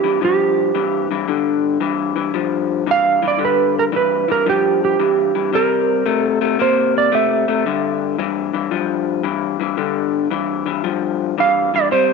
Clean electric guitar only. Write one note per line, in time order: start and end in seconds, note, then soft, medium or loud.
0.04 0.19 G2 medium
0.04 0.20 E3 medium
0.21 0.71 G2 medium
0.21 0.71 F3 medium
0.75 1.07 G2 medium
0.75 1.07 E3 medium
1.11 1.26 G2 medium
1.11 1.26 E3 medium
1.28 1.77 G2 medium
1.28 1.78 D3 medium
1.80 2.13 G2 medium
1.80 2.13 E3 medium
2.16 2.32 G2 medium
2.16 2.32 E3 medium
2.34 2.83 G2 medium
2.34 2.84 F3 medium
2.87 3.19 G2 medium
2.87 3.19 E3 medium
3.22 3.37 G2 medium
3.22 3.38 E3 medium
3.39 3.89 G2 medium
3.39 3.89 D3 medium
3.92 4.25 G2 medium
3.92 4.25 E3 medium
4.28 4.44 G2 medium
4.28 4.44 E3 medium
4.46 4.96 G2 medium
4.46 4.96 F3 medium
5.00 5.32 G2 medium
5.00 5.32 E3 medium
5.35 5.51 G2 medium
5.35 5.51 E3 medium
5.53 6.02 C3 medium
5.53 6.03 G3 medium
6.06 6.38 C3 medium
6.06 6.38 A3 medium
6.41 6.57 C3 medium
6.41 6.57 A3 medium
6.59 7.09 C3 medium
6.59 7.09 A#3 medium
7.12 7.44 C3 medium
7.12 7.45 A3 medium
7.48 7.64 C3 medium
7.48 7.64 A3 medium
7.66 8.15 G2 medium
7.66 8.16 D3 medium
8.19 8.51 G2 medium
8.19 8.51 E3 loud
8.53 8.70 G2 medium
8.53 8.70 E3 medium
8.71 9.21 G2 medium
8.71 9.21 F3 medium
9.23 9.56 G2 medium
9.23 9.57 E3 medium
9.60 9.76 G2 medium
9.60 9.76 E3 medium
9.77 10.27 G2 medium
9.77 10.28 D3 medium
10.31 10.63 G2 medium
10.31 10.63 E3 loud
10.66 10.82 G2 medium
10.66 10.82 E3 medium
10.84 11.34 G2 medium
10.84 11.34 F3 medium
11.38 11.70 G2 medium
11.38 11.70 E3 medium
11.74 11.89 G2 medium
11.74 11.89 E3 medium
11.91 12.13 C3 medium
11.91 12.13 G3 medium